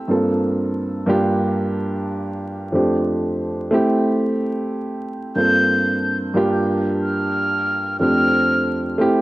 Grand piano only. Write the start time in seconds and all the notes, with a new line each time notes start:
Already playing: A3 C4 E4 G4
0.08 G2 A#3 C4 D4 F4 A4
1.06 G2 A#3 D4 F4 G4
2.72 F2 A3 C4 D4 G4
3.71 A3 C4 E4 G4
5.35 G2 A#3 C4 D4 F4 A4
6.34 G2 A#3 D4 F4 G4
7.99 F2 A3 C4 D4 G4
8.98 A3 C4 E4 G4